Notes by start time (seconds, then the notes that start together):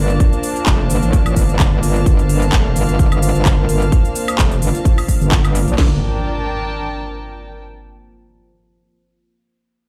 Already playing: G1 A#3 D4 F4 C5 F5 A5
0.10 shaker
0.20 kick, closed hi-hat, shaker
0.33 closed hi-hat, shaker
0.43 open hi-hat, shaker
0.56 closed hi-hat, shaker
0.66 F1, kick, clap, closed hi-hat, shaker
0.90 G1, open hi-hat, shaker
1.03 A1, closed hi-hat, shaker
1.13 kick, closed hi-hat, shaker
1.26 closed hi-hat, high woodblock, shaker
1.36 G1, kick, open hi-hat, shaker
1.49 G1, closed hi-hat, shaker
1.59 kick, clap, closed hi-hat, shaker
1.83 G1, open hi-hat, shaker
1.96 shaker
2.06 G1, kick, closed hi-hat, shaker
2.19 closed hi-hat, shaker
2.29 open hi-hat, shaker
2.42 closed hi-hat, shaker
2.52 F1, kick, clap, closed hi-hat, shaker
2.76 G1, open hi-hat, shaker
2.89 G1, closed hi-hat, shaker
2.99 kick, closed hi-hat, shaker
3.12 G1, closed hi-hat, high woodblock, shaker
3.22 open hi-hat, shaker
3.35 G1, closed hi-hat, shaker
3.45 kick, clap, closed hi-hat, shaker
3.69 G1, open hi-hat, shaker
3.82 shaker
3.92 kick, closed hi-hat, shaker
4.05 closed hi-hat, shaker
4.15 open hi-hat, shaker
4.28 closed hi-hat, high woodblock, shaker
4.39 F1, kick, clap, closed hi-hat, shaker
4.51 closed hi-hat, shaker
4.62 G1, open hi-hat, shaker
4.75 closed hi-hat, shaker
4.85 kick, closed hi-hat, shaker
4.98 open hi-hat, high woodblock, shaker
5.08 kick, open hi-hat, shaker
5.21 G1, closed hi-hat, shaker
5.32 kick, clap, closed hi-hat, shaker
5.45 closed hi-hat, high woodblock, shaker
5.55 open hi-hat, shaker
5.68 A#1, closed hi-hat, shaker
5.78 G1 D4, kick, snare, crash, impact
5.86 A#4
5.93 G5
5.99 A5